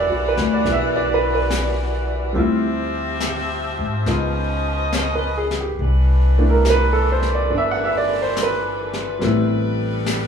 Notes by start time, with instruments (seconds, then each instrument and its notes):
Already playing: saxophone section E3 G3 F#4 D5, upright piano G3 B3 D4 F#4 B4 C#5 D5 E5
0.08 upright bass B1, upright piano F#4
0.28 upright piano B4
0.36 upright bass D2, snare
0.54 upright piano D5
0.64 upright bass B1, upright piano B3, brush sweep, snare
0.68 upright piano E4
0.72 upright piano E5
0.96 upright piano D5
1.14 upright piano B4
1.35 upright piano B4
1.50 snare, hi-hat pedal
2.33 upright bass D2, saxophone section F3 C4 G4 E5, upright piano G3 C4 E4, brush sweep
2.38 upright piano F4
3.20 snare, hi-hat pedal
3.79 upright bass G#2
4.06 upright bass C#2, upright piano G#3 B3 D#4 F4, saxophone section C#4 B4 D#5, brush sweep, snare
4.93 upright piano C#5, snare, hi-hat pedal
5.15 upright piano B4
5.37 upright piano G#4
5.51 snare
5.60 upright piano G4
5.79 upright bass C2, saxophone section E3 D4 A4 B4, brush sweep
6.38 upright piano A3 B3 D4 E4
6.50 upright piano A#4
6.65 snare, hi-hat pedal
6.70 upright piano B4
6.93 upright piano A4
7.12 upright piano C5
7.22 snare
7.35 upright piano D5
7.50 upright bass G1, upright piano B3 D4, brush sweep
7.58 upright piano E5
7.71 upright piano F#5
7.85 upright piano E5
7.97 upright piano D5
8.22 upright piano C5
8.36 snare, hi-hat pedal
8.43 upright piano B4
8.93 snare
9.19 upright bass A1, upright piano G3 B3, saxophone section G3 A4, brush sweep, snare
9.23 upright piano C4 E4
10.06 snare, hi-hat pedal